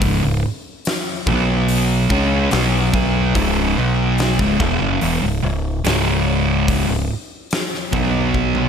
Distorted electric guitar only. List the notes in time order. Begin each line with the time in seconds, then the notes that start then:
Already playing: C#2 G#2 C#3
0.23 C#2 G#2
1.27 B2 F#3 B3
2.11 C#3 G#3 C#4
2.50 B2 F#3 B3
2.93 B2 F#3 B3
3.36 C#2 G#2 C#3
3.77 B2 F#3 B3
4.40 C#2 G#2
4.61 E2 B2
4.80 F#2 C#3
5.02 E2 B2
5.23 C#2 G#2
5.43 C#2 G#2
5.85 C#2 G#2 C#3
6.88 C#2 G#2
7.92 B2 F#3 B3